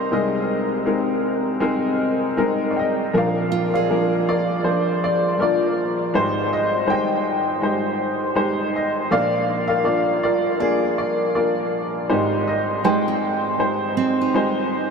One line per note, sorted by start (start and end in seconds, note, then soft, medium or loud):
0.00 0.13 G3 medium
0.00 0.12 C4 medium
0.00 0.13 D4 medium
0.00 0.12 D#4 medium
0.00 0.45 A#4 medium
0.00 0.14 C5 medium
0.00 0.13 D5 medium
0.00 0.13 D#5 medium
0.00 0.13 F5 medium
0.00 0.45 G5 medium
0.11 3.10 C2 medium
0.11 3.10 C3 medium
0.11 0.75 G#3 medium
0.11 0.75 C4 medium
0.11 0.75 D#4 medium
0.11 2.74 G#4 medium
0.11 0.75 A#4 medium
0.11 2.35 D#5 medium
0.86 1.50 G#3 medium
0.86 1.50 C4 medium
0.86 1.50 D#4 medium
0.86 1.51 A#4 medium
1.60 2.26 G#3 medium
1.60 2.26 C4 medium
1.60 2.26 D#4 medium
1.60 2.26 A#4 medium
2.37 3.02 G#3 medium
2.37 3.02 C4 medium
2.37 3.02 D#4 medium
2.37 3.03 A#4 medium
2.37 2.73 D#5 medium
2.70 2.77 D5 medium
2.76 3.17 D#5 medium
2.76 3.11 G5 medium
3.13 6.10 A#1 medium
3.13 6.10 A#2 soft
3.13 3.77 F3 medium
3.13 3.78 A#3 medium
3.13 3.78 D4 medium
3.13 3.16 A#4 medium
3.17 3.73 A#4 medium
3.17 3.72 D5 medium
3.17 3.68 F5 medium
3.52 6.10 F4 medium
3.74 6.31 G#4 soft
3.74 3.89 A#4 medium
3.74 4.27 D5 medium
3.74 4.30 F5 medium
3.90 4.53 F3 medium
3.90 4.53 A#3 medium
3.90 4.53 D4 medium
3.90 4.28 A#4 medium
4.29 5.41 F4 medium
4.29 5.38 A#4 medium
4.29 4.99 D5 medium
4.63 5.27 F3 medium
4.63 5.27 A#3 medium
4.63 5.28 D4 medium
4.63 5.28 C5 medium
5.04 5.40 D5 medium
5.38 6.02 F3 medium
5.38 6.02 A#3 medium
5.38 6.03 D4 medium
5.38 6.03 A#4 medium
5.38 6.18 D5 medium
5.43 6.12 F4 medium
6.14 9.07 G#1 medium
6.14 9.07 G#2 medium
6.14 6.77 G#3 medium
6.14 6.77 D#4 medium
6.14 6.77 G4 medium
6.14 6.78 C5 medium
6.53 6.87 D#5 medium
6.86 7.50 G#3 medium
6.86 7.50 D#4 medium
6.86 7.51 G4 medium
6.86 6.90 C5 medium
6.86 8.71 G5 medium
6.91 7.62 C5 medium
6.91 8.71 D#5 medium
7.62 8.25 G#3 medium
7.62 8.25 D#4 medium
7.62 8.25 G4 medium
7.62 8.26 C5 medium
8.35 8.99 G#3 medium
8.35 8.99 D#4 medium
8.35 8.99 G4 medium
8.35 8.99 C5 medium
8.76 9.09 D#5 medium
9.11 12.05 A#1 medium
9.11 12.06 A#2 medium
9.11 9.74 A#3 medium
9.11 9.74 D4 medium
9.11 9.74 F4 medium
9.11 9.68 A#4 medium
9.11 9.68 D5 medium
9.11 9.66 F5 loud
9.68 10.23 A#4 medium
9.68 9.83 D5 medium
9.68 10.25 F5 medium
9.84 10.48 A#3 medium
9.84 10.48 D4 medium
9.84 10.24 F4 medium
9.84 10.22 D5 medium
10.23 10.59 F4 medium
10.23 11.36 A#4 medium
10.23 10.97 D5 medium
10.60 11.23 A#3 medium
10.60 11.23 D4 medium
10.60 11.23 F4 medium
10.60 11.24 G#4 medium
10.60 12.43 D5 soft
10.98 11.34 D5 medium
11.35 11.98 A#3 medium
11.35 11.98 D4 medium
11.35 11.99 F4 medium
11.35 12.07 A#4 medium
11.35 12.12 D5 medium
12.10 14.90 G#1 medium
12.10 14.90 G#2 medium
12.10 12.73 G#3 medium
12.10 12.73 D#4 medium
12.10 12.73 G4 medium
12.10 12.48 C5 medium
12.48 12.86 D#5 medium
12.83 13.47 G#3 medium
12.83 14.90 G#3 soft
12.83 13.48 D#4 medium
12.83 13.48 G4 medium
12.83 13.48 C5 medium
12.83 14.70 D#5 medium
12.83 14.69 G5 medium
13.08 13.96 C4 soft
13.58 14.23 G#3 medium
13.58 14.23 D#4 medium
13.58 14.23 G4 medium
13.58 14.23 C5 medium
13.97 14.90 C4 medium
14.21 14.90 D#4 soft
14.34 14.90 G#3 medium
14.34 14.90 D#4 medium
14.34 14.90 G4 medium
14.34 14.90 C5 medium